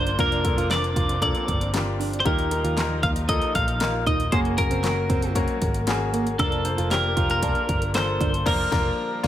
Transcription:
Already playing: G1 F3 A#3 D4 F4 A#4 C5
0.07 closed hi-hat
0.18 F1 F3 A#3 C4 D4 F4 A#4, kick, closed hi-hat
0.32 closed hi-hat
0.44 A#3 D4 F4 A4, kick, closed hi-hat
0.57 F1 F4, closed hi-hat
0.70 A#3 D4 F4 A#4 D5, snare, clap, closed hi-hat
0.84 closed hi-hat
0.96 F1 F4, kick, closed hi-hat
1.09 closed hi-hat
1.22 A#3 D4 F4 A4 D5, kick, closed hi-hat
1.35 closed hi-hat
1.48 G1, kick, closed hi-hat
1.61 closed hi-hat
1.73 A#3 D4 F4 G4, snare, clap, closed hi-hat
2.00 D4, open hi-hat
2.13 closed hi-hat
2.20 C5
2.25 D#2 A#2 F3 G3 A#3 D#4 F4 G4 A#4, kick, closed hi-hat
2.39 closed hi-hat
2.51 A#3 D#4 F4 A#4, closed hi-hat
2.64 D#2 F4, closed hi-hat
2.77 A#3 D#4 F4 A#4, snare, clap, closed hi-hat
3.03 D#2 F4 F5, kick, closed hi-hat
3.16 closed hi-hat
3.29 A#3 D#4 F4 A4 D#5, kick, closed hi-hat
3.42 closed hi-hat
3.55 A#1 F5, kick, closed hi-hat
3.68 closed hi-hat
3.80 A#3 D#4 F4 A#4, snare, clap, closed hi-hat
4.06 D#1 D#4 D#5, kick, closed hi-hat
4.20 closed hi-hat
4.32 F#1 C#3 F#3 G#3 A#3 C#4 F#4 G#4 C5, kick, closed hi-hat
4.45 closed hi-hat
4.58 A#3 C#4 F#4 A#4, kick, closed hi-hat
4.71 F#1 C4, closed hi-hat
4.84 A#3 C#4 F#4 A#4, snare, clap, closed hi-hat
5.09 F#1 C4, kick, closed hi-hat
5.22 closed hi-hat
5.35 A#3 C#4 F#4 A#4, kick, closed hi-hat
5.48 closed hi-hat
5.62 G#1, kick, closed hi-hat
5.74 closed hi-hat
5.87 A#3 C#4 F#4 G#4, snare, clap, closed hi-hat
6.13 A#3, closed hi-hat
6.27 closed hi-hat
6.39 F1 D3 F3 A#3 D4 F4 A4 A#4, kick, closed hi-hat
6.52 closed hi-hat
6.65 A#3 D4 F4 C5, closed hi-hat
6.78 F1 F4, closed hi-hat
6.91 A#3 D4 F4 G4 A#4, snare, clap, closed hi-hat
7.17 F1 F4, kick, closed hi-hat
7.30 A#4, closed hi-hat
7.42 A#3 D4 F4 A5, kick, closed hi-hat
7.55 closed hi-hat
7.69 G1, kick, closed hi-hat
7.82 closed hi-hat
7.94 A#3 D4 F4 A4 C5, snare, clap, closed hi-hat
8.20 G1 D4, kick, closed hi-hat
8.34 closed hi-hat
8.46 F1 F3 G3 A#3 D4 F4 A#4, kick, snare, crash
8.71 F1 A#3 D4 F4 A#4, kick, snare
9.23 F1 A#3 D4 F4, kick, snare

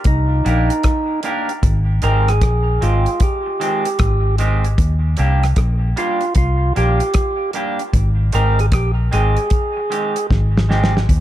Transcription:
0.04 C2 D#4, kick, closed hi-hat
0.45 A#1 A#3 D4 G4 A#4, closed hi-hat
0.70 muted clean electric guitar stroke, closed hi-hat
0.83 kick, cross-stick, closed hi-hat
1.23 A#3 D4 G4 A#4, closed hi-hat
1.49 closed hi-hat
1.63 G#1, kick, closed hi-hat
2.02 G#1 D#3 G#3 C4 G4 A#4, closed hi-hat
2.28 G#4, cross-stick, closed hi-hat
2.41 A#1, kick, cross-stick, closed hi-hat
2.81 G#1 D#3 G#3 C4 F4 G4, closed hi-hat
3.06 closed hi-hat
3.20 G4, kick, closed hi-hat
3.46 muted clean electric guitar stroke
3.60 D#3 G#3 C4 G4, closed hi-hat
3.85 closed hi-hat
3.99 G#1, kick, cross-stick, closed hi-hat
4.38 D#3 G#3 C4 G4, closed hi-hat
4.64 closed hi-hat
4.78 D#2, kick, closed hi-hat
5.17 C2 G3 A#3 D4 G4, closed hi-hat
5.43 cross-stick, closed hi-hat
5.56 A#1, kick, cross-stick, closed hi-hat
5.96 G3 A#3 D4 F4 G4, closed hi-hat
6.21 closed hi-hat
6.35 C2 F4, kick, closed hi-hat
6.76 A#1 G3 A#3 D4 G4, closed hi-hat
7.00 muted clean electric guitar stroke, closed hi-hat
7.14 kick, cross-stick, closed hi-hat
7.53 G3 A#3 D4 G4, closed hi-hat
7.79 closed hi-hat
7.93 G#1, kick, closed hi-hat
8.32 G#1 D#3 G#3 C4 G4 A#4, closed hi-hat
8.59 G#4, closed hi-hat
8.72 A#1 G4, kick, cross-stick, closed hi-hat
9.11 G#1 D#3 G#3 C4 G4 G#4, closed hi-hat
9.37 closed hi-hat
9.50 kick, closed hi-hat
9.77 muted clean electric guitar stroke
9.90 D#3 G#3 C4 G4, closed hi-hat
10.16 closed hi-hat
10.31 G#1, kick, snare
10.57 snare
10.69 D#3 G#3 C4 G4, snare
10.84 snare
10.97 snare
11.09 D#2, kick, closed hi-hat

